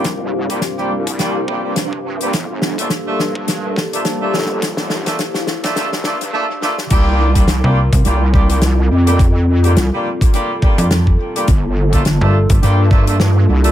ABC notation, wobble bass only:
X:1
M:4/4
L:1/16
Q:"Swing 16ths" 1/4=105
K:Cmix
V:1 name="Wobble bass" clef=bass
C,, C,,3 z2 C,,4 B,,, G,,4- G,, | G,,, G,,,3 z2 G,,4 z4 G,,,2- | G,,, G,,,3 z4 F,,,2 G,, G,, z4 | C,,4 C,, z3 C,,6 F,,2- |
F,,4 C,, z8 z3 | G,,,4 G,,, z3 G,,6 C,,2 |]